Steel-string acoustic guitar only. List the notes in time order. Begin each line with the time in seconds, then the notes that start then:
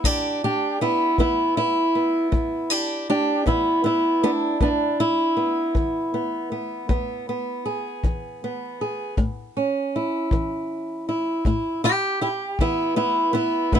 0.04 E2 D4 G4
0.44 D4 G4
0.81 B3 E4
1.19 E3 B3 E4
1.57 E4
1.95 B3
2.32 E2
2.70 D4 G4
3.10 D4 G4
3.46 E3 B3 E4
3.84 B3 E4
4.23 B3 D4
4.61 E2 B3 D4
5.00 E4
5.37 B3
5.75 E3
6.14 B3
6.52 B3
6.89 E2 B3
7.29 B3
7.66 G#4
8.04 E3
8.44 B3
8.81 G#4
9.18 A2
9.57 C#4
9.96 E4
10.32 E3
11.09 E4
11.46 A2 E4
11.84 E4 G4
12.21 E4 G4
12.60 E3 B3 E4
12.96 B3 E4
13.33 B3 E4
13.73 A2 B3 E4